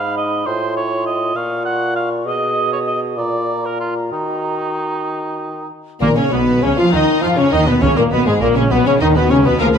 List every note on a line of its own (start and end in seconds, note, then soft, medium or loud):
0.00 0.46 G#2 medium
0.00 0.43 D#4 soft
0.00 0.17 F5 medium
0.00 0.47 B5 soft
0.17 0.48 D#5 medium
0.46 1.34 A2 medium
0.46 2.22 F4 medium
0.46 0.76 C5 medium
0.46 1.36 C6 medium
0.77 1.05 C#5 medium
1.06 1.38 D#5 medium
1.35 2.27 A#2 medium
1.35 1.64 F5 medium
1.35 2.24 C#6 soft
1.65 1.95 F#5 medium
1.96 2.09 F5 medium
2.25 3.18 B2 medium
2.25 3.15 G#4 soft
2.25 2.71 D#5 medium
2.25 3.17 D#6 soft
2.73 2.79 C#5 medium
2.87 3.01 D#5 medium
3.17 4.11 A#2 soft
3.17 4.13 F4 soft
3.17 3.67 D5 medium
3.17 5.71 A#5 soft
3.66 3.79 A#4 medium
3.80 3.95 F4 medium
4.12 5.67 D#3 medium
4.12 5.68 D#4 medium
4.12 5.71 F#4 soft
6.01 6.08 A#1 medium
6.01 6.18 A#2 medium
6.01 6.08 A#2 medium
6.01 6.90 D#3 medium
6.01 6.18 A#3 medium
6.01 6.08 A#3 medium
6.01 6.09 A#3 medium
6.01 6.08 A#3 medium
6.01 6.09 A#3 medium
6.01 6.16 A#4 medium
6.16 6.31 C#3 medium
6.16 6.32 C#3 medium
6.16 6.31 C#4 medium
6.16 6.23 C#4 medium
6.16 6.34 C#4 medium
6.16 6.33 C#4 medium
6.16 6.32 C#5 medium
6.16 6.24 C#5 medium
6.32 6.63 B1 medium
6.32 6.64 B2 medium
6.32 6.63 B2 medium
6.32 6.64 B3 medium
6.32 6.46 B3 medium
6.32 6.65 B3 medium
6.32 6.41 B3 medium
6.32 6.63 B3 medium
6.32 6.63 B4 medium
6.62 6.69 C#2 medium
6.62 6.79 C#3 medium
6.62 6.69 C#3 medium
6.62 6.69 C#4 medium
6.62 6.78 C#4 medium
6.62 6.77 C#4 medium
6.62 6.79 C#4 medium
6.62 6.70 C#4 medium
6.62 6.78 C#5 medium
6.77 6.92 F3 medium
6.77 6.93 F3 medium
6.77 6.92 F4 medium
6.77 6.85 F4 medium
6.77 6.93 F4 medium
6.77 6.86 F4 medium
6.77 6.94 F4 medium
6.77 6.93 F5 medium
6.77 6.84 F5 medium
6.92 7.02 D#2 medium
6.92 7.23 D#3 medium
6.92 7.02 D#3 medium
6.92 7.22 D#4 medium
6.92 7.06 D#4 medium
6.92 7.24 D#4 medium
6.92 7.25 D#4 medium
6.92 7.24 D#4 medium
6.92 7.23 D#5 medium
7.21 7.38 F2 medium
7.21 7.38 F3 medium
7.21 7.37 F4 medium
7.21 7.30 F4 medium
7.21 7.38 F4 medium
7.21 7.29 F5 medium
7.21 7.38 F5 medium
7.37 7.51 C#3 medium
7.37 7.44 C#3 medium
7.37 7.52 C#4 medium
7.37 7.51 C#4 medium
7.37 7.45 C#4 medium
7.37 7.53 C#4 medium
7.37 7.54 C#4 medium
7.37 7.52 C#5 medium
7.37 7.44 C#5 medium
7.51 7.67 D#2 medium
7.51 7.69 D#3 medium
7.51 7.67 D#3 medium
7.51 7.67 D#4 medium
7.51 7.59 D#4 medium
7.51 7.67 D#4 medium
7.51 7.68 D#4 medium
7.51 7.67 D#4 medium
7.51 7.67 D#5 medium
7.51 7.59 D#5 medium
7.66 7.83 B2 medium
7.66 7.74 B2 medium
7.66 7.83 B3 medium
7.66 7.73 B3 medium
7.66 7.83 B3 medium
7.66 7.73 B3 medium
7.66 7.83 B3 medium
7.66 7.82 B4 medium
7.66 7.74 B4 medium
7.81 7.88 C#2 medium
7.81 7.96 C#3 medium
7.81 7.89 C#3 medium
7.81 8.68 D#3 medium
7.81 7.87 C#4 medium
7.81 7.96 C#4 medium
7.81 7.88 C#4 medium
7.81 7.99 C#4 medium
7.81 7.97 C#5 medium
7.96 8.04 A#2 medium
7.96 8.03 A#3 medium
7.96 8.11 A#3 medium
7.96 8.03 A#3 medium
7.96 8.12 A#3 medium
7.96 8.02 A#4 medium
7.96 8.04 A#4 medium
8.11 8.17 B1 medium
8.11 8.29 B2 medium
8.11 8.19 B2 medium
8.11 8.26 B3 medium
8.11 8.27 B3 medium
8.11 8.27 B4 medium
8.26 8.41 G#2 medium
8.26 8.33 G#2 medium
8.26 8.33 G#3 medium
8.26 8.42 G#3 medium
8.26 8.43 G#3 medium
8.26 8.41 G#4 medium
8.26 8.33 G#4 medium
8.41 8.56 A#1 medium
8.41 8.48 A#2 medium
8.41 8.57 A#2 medium
8.41 8.56 A#3 medium
8.41 8.58 A#3 medium
8.41 8.57 A#3 medium
8.41 8.56 A#3 medium
8.41 8.57 A#3 medium
8.41 8.47 A#4 medium
8.41 8.56 A#4 medium
8.55 8.73 C#3 medium
8.55 8.72 C#3 medium
8.55 8.71 C#4 medium
8.55 8.73 C#4 medium
8.55 8.72 C#4 medium
8.55 8.62 C#4 medium
8.55 8.73 C#4 medium
8.55 8.61 C#5 medium
8.55 8.71 C#5 medium
8.70 8.77 B1 medium
8.70 8.86 B2 medium
8.70 8.78 B2 medium
8.70 8.86 B3 medium
8.70 8.88 B3 medium
8.70 8.86 B3 medium
8.70 8.87 B3 medium
8.70 8.77 B4 medium
8.85 9.01 C#3 medium
8.85 9.02 C#3 medium
8.85 9.01 C#4 medium
8.85 8.92 C#4 medium
8.85 9.02 C#4 medium
8.85 9.01 C#4 medium
8.85 8.94 C#4 medium
8.85 9.01 C#5 medium
8.85 8.92 C#5 medium
9.00 9.16 D#2 medium
9.00 9.18 D#3 medium
9.00 9.17 D#3 medium
9.00 9.15 D#4 medium
9.00 9.16 D#4 medium
9.00 9.07 D#4 medium
9.00 9.09 D#4 medium
9.00 9.07 D#5 medium
9.00 9.16 D#5 medium
9.15 9.33 B2 medium
9.15 9.32 B2 medium
9.15 9.30 B3 medium
9.15 9.22 B3 medium
9.15 9.30 B3 medium
9.15 9.31 B3 medium
9.15 9.33 B3 medium
9.15 9.30 B4 medium
9.15 9.31 B4 medium
9.30 9.45 C#2 medium
9.30 9.45 C#3 medium
9.30 9.46 C#3 medium
9.30 9.45 C#4 medium
9.30 9.36 C#4 medium
9.30 9.38 C#4 medium
9.30 9.47 C#4 medium
9.30 9.36 C#5 medium
9.30 9.46 C#5 medium
9.45 9.61 B2 medium
9.45 9.60 B3 medium
9.45 9.52 B3 medium
9.45 9.60 B3 medium
9.45 9.61 B3 medium
9.45 9.60 B4 medium
9.45 9.61 B4 medium
9.59 9.78 D2 medium
9.59 9.78 F3 medium
9.59 9.66 A#3 medium
9.59 9.78 G#4 medium
9.59 9.67 A#4 medium
9.59 9.66 A#4 medium
9.59 9.75 A#4 medium
9.59 9.67 F5 medium
9.59 9.78 F5 medium
9.59 9.68 G#5 medium
9.74 9.78 B4 medium